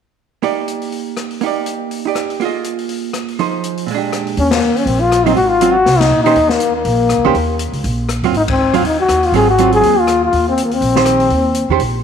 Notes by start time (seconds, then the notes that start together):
0.42 A#3 D#4 G4 D5, open hi-hat
0.68 closed hi-hat
0.82 open hi-hat
0.92 open hi-hat
1.17 cross-stick, closed hi-hat
1.30 open hi-hat
1.41 A#3 D#4 G4, open hi-hat
1.46 D5
1.66 closed hi-hat
1.91 open hi-hat
2.05 D#4 G4 D5
2.15 cross-stick, closed hi-hat
2.30 open hi-hat
2.40 A#3 F4 G#4, open hi-hat
2.45 D#5
2.64 closed hi-hat
2.78 open hi-hat
2.89 open hi-hat
3.13 cross-stick, closed hi-hat
3.28 open hi-hat
3.39 F3 D#4 G#4 C5, open hi-hat
3.63 closed hi-hat
3.77 open hi-hat
3.86 A#2, open hi-hat
3.91 G#3 D4
3.98 G4
4.12 cross-stick, closed hi-hat
4.27 open hi-hat
4.37 D#2 C#4, open hi-hat
4.51 A#3, snare, ride
4.77 C#4, open hi-hat
4.86 A#1 C4, open hi-hat
5.01 F4
5.12 cross-stick, closed hi-hat
5.26 F#3 C4 D#4 F4, open hi-hat
5.36 G#1 F#4, open hi-hat
5.49 F4
5.61 F#3 C4 F4, closed hi-hat
5.73 F#4
5.86 C2, snare, open hi-hat
6.00 D#4, snare, ride
6.11 A#2
6.24 D#3 C#4 D#4 G4 C5, open hi-hat
6.36 D#2, open hi-hat
6.49 A#3, snare
6.60 closed hi-hat
6.76 A#3
6.85 A#1, open hi-hat
7.09 cross-stick, closed hi-hat
7.18 C2
7.25 C#2 D#3 C#4 G4 C5
7.34 D#2, open hi-hat
7.59 closed hi-hat
7.72 C#2, open hi-hat
7.84 A#1, open hi-hat
8.09 cross-stick, closed hi-hat
8.22 D#2 F#3 C4 F4, open hi-hat
8.32 G#1, open hi-hat
8.37 D#4
8.48 C4, kick, ride
8.74 F#3 C4 F4, open hi-hat
8.82 D#2, open hi-hat
8.87 D#4
9.00 F#4
9.09 D#2, cross-stick, closed hi-hat
9.23 F4, open hi-hat
9.32 G#1 F#3 C4 F4 G#4, open hi-hat
9.50 F#4
9.58 F#3 C4 F4, closed hi-hat
9.72 G#4, open hi-hat
9.82 D#2, open hi-hat
9.99 F4
10.07 cross-stick, closed hi-hat
10.24 F4
10.33 D#2, open hi-hat
10.49 C4
10.57 closed hi-hat
10.65 A#3
10.71 C4, open hi-hat
10.81 A#1, open hi-hat
10.95 D#3 G4 C5, snare
11.05 cross-stick, closed hi-hat
11.20 open hi-hat
11.30 D#2, open hi-hat
11.54 closed hi-hat
11.69 E2 D#3 C#4 G4 C5
11.79 A#1, open hi-hat